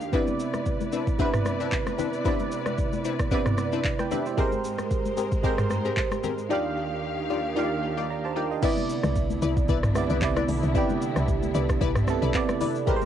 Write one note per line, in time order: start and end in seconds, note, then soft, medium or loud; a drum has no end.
0.00 0.11 D#2 medium
0.00 0.11 D#3 medium
0.00 0.15 D#3 medium
0.00 0.15 D4 medium
0.00 0.11 G4 medium
0.00 0.15 G4 medium
0.00 0.11 F5 medium
0.00 0.15 F5 medium
0.00 shaker medium
0.12 0.98 C3 medium
0.12 4.34 C3 medium
0.12 0.99 B3 medium
0.12 0.62 C4 medium
0.12 0.62 D4 medium
0.12 0.62 E4 medium
0.12 4.34 E4 medium
0.12 0.99 E4 medium
0.12 4.34 B4 medium
0.12 0.63 B4 medium
0.12 4.34 D5 medium
0.12 1.00 D5 medium
0.12 kick loud
0.12 low conga medium
0.12 shaker medium
0.27 high conga medium
0.27 shaker soft
0.40 shaker loud
0.54 cross-stick medium
0.54 high conga medium
0.54 shaker medium
0.66 kick medium
0.66 shaker medium
0.81 high conga medium
0.81 shaker medium
0.92 1.02 C4 medium
0.92 1.02 D4 medium
0.92 1.02 E4 medium
0.92 1.02 B4 medium
0.92 shaker loud
1.07 kick loud
1.07 shaker medium
1.18 2.04 C3 medium
1.18 2.05 B3 medium
1.18 1.29 C4 medium
1.18 1.29 D4 medium
1.18 1.29 E4 medium
1.18 2.05 E4 medium
1.18 1.29 B4 loud
1.18 2.06 B4 loud
1.18 kick loud
1.18 low conga medium
1.18 shaker medium
1.34 cross-stick loud
1.34 mid tom medium
1.34 shaker medium
1.45 cross-stick medium
1.45 high conga medium
1.45 shaker medium
1.60 1.68 C4 medium
1.60 1.68 D4 medium
1.60 1.68 E4 medium
1.60 1.68 B4 medium
1.60 shaker medium
1.72 kick loud
1.72 clap loud
1.72 shaker medium
1.87 cross-stick medium
1.87 high conga medium
1.87 shaker medium
1.98 2.08 C4 medium
1.98 2.08 D4 medium
1.98 2.08 E4 medium
1.98 2.09 B4 medium
1.98 high conga medium
1.98 low conga medium
1.98 shaker medium
2.13 shaker medium
2.24 3.10 C3 medium
2.24 3.11 B3 medium
2.24 2.75 C4 medium
2.24 2.75 D4 medium
2.24 2.75 E4 medium
2.24 3.12 E4 medium
2.24 2.75 B4 loud
2.24 3.12 D5 medium
2.24 kick loud
2.24 low conga medium
2.24 shaker medium
2.40 high conga medium
2.40 shaker soft
2.52 shaker loud
2.66 cross-stick medium
2.66 high conga medium
2.66 shaker medium
2.78 kick medium
2.78 shaker medium
2.93 high conga medium
2.93 shaker medium
3.05 3.14 C4 medium
3.05 3.15 D4 medium
3.05 3.15 E4 medium
3.05 3.15 B4 medium
3.05 shaker loud
3.19 kick loud
3.19 cross-stick loud
3.19 shaker medium
3.31 4.17 C3 medium
3.31 4.17 B3 medium
3.31 3.41 C4 medium
3.31 3.41 D4 medium
3.31 3.41 E4 medium
3.31 3.86 E4 medium
3.31 3.41 B4 loud
3.31 3.86 D5 medium
3.31 kick loud
3.31 low conga medium
3.31 shaker medium
3.46 cross-stick loud
3.46 mid tom medium
3.46 shaker medium
3.58 cross-stick medium
3.58 high conga medium
3.58 shaker medium
3.72 3.80 C4 medium
3.72 3.81 D4 medium
3.72 3.81 E4 medium
3.72 3.81 B4 medium
3.72 shaker medium
3.84 kick loud
3.84 clap loud
3.84 shaker medium
3.99 4.11 B4 medium
3.99 4.11 G5 medium
3.99 cross-stick medium
3.99 high conga medium
3.99 shaker medium
4.11 4.21 C4 medium
4.11 4.21 D4 medium
4.11 4.21 E4 medium
4.11 4.26 G4 medium
4.11 4.21 B4 medium
4.11 4.26 E5 medium
4.11 high conga medium
4.11 low conga medium
4.11 shaker medium
4.26 4.52 E4 medium
4.26 4.39 C5 medium
4.26 shaker medium
4.37 6.48 G#2 medium
4.37 5.23 G#3 medium
4.37 6.48 G#3 medium
4.37 4.87 C4 medium
4.37 4.87 G4 medium
4.37 5.23 G4 medium
4.37 4.87 G#4 medium
4.37 6.48 A#4 medium
4.37 4.87 A#4 loud
4.37 5.24 A#4 medium
4.37 6.48 C5 medium
4.37 5.25 C5 loud
4.37 kick loud
4.37 low conga medium
4.37 shaker medium
4.52 high conga medium
4.52 shaker soft
4.64 shaker loud
4.79 cross-stick medium
4.79 high conga medium
4.79 shaker medium
4.91 kick medium
4.91 shaker medium
5.05 high conga medium
5.05 shaker medium
5.17 5.27 C4 medium
5.17 5.27 G4 medium
5.17 5.27 G#4 medium
5.17 5.27 A#4 medium
5.17 shaker loud
5.32 kick loud
5.32 shaker medium
5.43 6.29 G#3 medium
5.43 5.54 C4 medium
5.43 6.30 G4 medium
5.43 5.54 G4 medium
5.43 5.54 G#4 medium
5.43 5.54 A#4 loud
5.43 6.30 A#4 medium
5.43 6.31 C5 medium
5.43 kick loud
5.43 low conga medium
5.43 shaker medium
5.58 cross-stick loud
5.58 mid tom medium
5.58 shaker medium
5.70 cross-stick medium
5.70 high conga medium
5.70 shaker medium
5.85 5.93 C4 medium
5.85 5.93 G4 medium
5.85 5.93 G#4 medium
5.85 5.93 A#4 medium
5.85 shaker medium
5.97 kick medium
5.97 clap loud
5.97 shaker medium
6.12 cross-stick medium
6.12 high conga medium
6.12 shaker medium
6.24 6.33 C4 medium
6.24 6.33 G4 medium
6.24 6.33 G#4 medium
6.24 6.33 A#4 medium
6.24 high conga medium
6.24 low conga medium
6.24 shaker medium
6.38 shaker medium
6.49 8.60 D#2 medium
6.49 7.35 D#3 medium
6.49 8.61 D#3 medium
6.49 7.36 D4 medium
6.49 6.99 D#4 medium
6.49 7.00 F4 medium
6.49 8.61 G4 medium
6.49 7.00 G4 medium
6.49 7.36 G4 medium
6.49 7.00 D5 loud
6.49 8.61 F5 medium
6.49 7.37 F5 medium
7.30 7.39 D#4 medium
7.30 7.39 F4 medium
7.30 7.40 G4 medium
7.30 7.40 D5 medium
7.55 8.41 D#3 medium
7.55 8.42 D4 medium
7.55 7.66 D#4 loud
7.55 7.66 F4 medium
7.55 7.66 G4 medium
7.55 8.10 G4 medium
7.55 7.66 D5 loud
7.55 8.11 F5 medium
7.97 8.05 D#4 medium
7.97 8.05 F4 medium
7.97 8.05 G4 medium
7.97 8.05 D5 medium
8.10 8.24 D5 medium
8.10 8.24 A#5 medium
8.25 8.36 C5 medium
8.25 8.36 A5 medium
8.36 8.45 D#4 medium
8.36 8.46 F4 medium
8.36 8.46 G4 medium
8.36 8.51 A#4 medium
8.36 8.46 D5 medium
8.36 8.50 G5 medium
8.51 8.77 G4 medium
8.51 8.76 D#5 medium
8.62 9.48 C3 medium
8.62 12.83 D3 medium
8.62 12.83 B3 medium
8.62 9.48 B3 medium
8.62 12.83 D4 medium
8.62 12.83 E4 loud
8.62 9.12 E4 medium
8.62 9.49 E4 medium
8.62 9.12 B4 medium
8.62 9.12 D5 loud
8.62 9.49 D5 loud
8.62 kick loud
8.62 crash loud
8.62 low conga medium
8.62 shaker medium
8.77 high conga medium
8.77 shaker soft
8.89 shaker loud
9.03 9.39 C2 loud
9.03 cross-stick medium
9.03 high conga medium
9.03 shaker medium
9.16 kick medium
9.16 shaker medium
9.30 high conga medium
9.30 shaker medium
9.42 9.67 C2 loud
9.42 9.52 E4 medium
9.42 9.52 B4 medium
9.42 9.52 D5 medium
9.42 shaker loud
9.57 kick loud
9.57 shaker medium
9.68 10.07 B1 medium
9.68 9.78 E4 loud
9.68 9.78 B4 medium
9.68 9.79 D5 loud
9.68 kick loud
9.68 low conga medium
9.68 shaker medium
9.83 cross-stick loud
9.83 mid tom loud
9.83 shaker medium
9.94 10.17 C3 medium
9.94 10.17 B3 medium
9.94 10.18 E4 medium
9.94 10.18 D5 medium
9.94 cross-stick medium
9.94 high conga medium
9.94 shaker medium
10.10 10.21 C2 medium
10.10 10.18 E4 medium
10.10 10.18 B4 medium
10.10 10.18 D5 medium
10.10 shaker medium
10.21 10.46 C2 loud
10.21 10.65 C3 medium
10.21 10.66 B3 medium
10.21 10.66 E4 medium
10.21 10.67 D5 loud
10.21 kick loud
10.21 clap loud
10.21 shaker medium
10.36 10.44 E4 medium
10.36 10.44 B4 medium
10.36 10.44 D5 medium
10.36 cross-stick loud
10.36 high conga medium
10.36 shaker medium
10.48 10.62 B1 medium
10.48 open hi-hat medium
10.48 high conga medium
10.48 low conga medium
10.48 shaker medium
10.63 10.74 C2 loud
10.63 shaker medium
10.74 11.60 C3 medium
10.74 11.61 B3 medium
10.74 11.24 E4 medium
10.74 11.61 E4 medium
10.74 11.62 G4 loud
10.74 11.24 B4 medium
10.74 11.24 D5 loud
10.74 kick loud
10.74 low conga medium
10.74 shaker medium
10.89 high conga medium
10.89 shaker soft
11.02 shaker loud
11.16 11.52 C2 loud
11.16 cross-stick medium
11.16 high conga medium
11.16 shaker medium
11.28 kick medium
11.28 shaker medium
11.43 high conga medium
11.43 shaker medium
11.54 11.79 C2 loud
11.54 11.64 E4 medium
11.54 11.64 B4 medium
11.54 11.64 D5 medium
11.54 shaker loud
11.69 kick loud
11.69 cross-stick loud
11.69 shaker medium
11.81 12.19 B1 loud
11.81 11.90 E4 medium
11.81 11.91 B4 medium
11.81 11.91 D5 loud
11.81 kick loud
11.81 low conga medium
11.81 shaker medium
11.95 cross-stick loud
11.95 mid tom loud
11.95 shaker medium
12.07 12.29 C3 medium
12.07 12.30 B3 medium
12.07 12.30 E4 medium
12.07 12.31 A4 medium
12.07 cross-stick medium
12.07 high conga medium
12.07 shaker medium
12.22 12.33 B1 medium
12.22 12.58 E4 medium
12.22 12.58 B4 medium
12.22 12.58 D5 medium
12.22 shaker medium
12.33 12.77 C3 medium
12.33 12.78 B3 medium
12.33 12.79 E4 medium
12.33 12.79 D5 loud
12.33 kick loud
12.33 clap loud
12.33 shaker medium
12.49 cross-stick loud
12.49 high conga medium
12.49 shaker medium
12.61 12.85 E4 medium
12.61 12.85 B4 medium
12.61 12.86 D5 medium
12.61 open hi-hat medium
12.61 high conga medium
12.61 low conga medium
12.61 shaker medium
12.75 shaker medium
12.86 13.05 G#3 medium
12.86 13.05 C4 medium
12.86 13.05 G4 medium
12.86 13.05 G4 loud
12.86 13.05 G4 medium
12.86 13.05 A#4 medium
12.86 12.96 B4 medium
12.86 13.05 C5 loud
12.86 kick loud
12.86 low conga medium
12.86 shaker medium
12.96 13.05 C5 loud
13.01 high conga medium
13.01 shaker soft